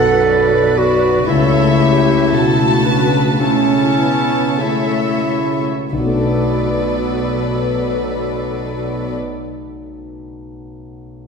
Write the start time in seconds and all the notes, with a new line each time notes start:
Already playing: B1 F#2 B2 F#3 A4 B4 F#5
0.29 D5
0.78 F#4
1.27 C#2 C#3 A3 E4 A4 C#5 E5
1.79 G4
2.32 B2 A3 F#4 A4 A5
2.84 D4 B4
3.40 A3 C#4 E4 C#5 A5
3.99 B3
4.60 A3 E4 A4 C#5 E5
5.91 B1 B2 F#3 B3 A4 B4 D5
5.99 B2
6.06 A3
6.13 D4
6.20 B4
6.27 D5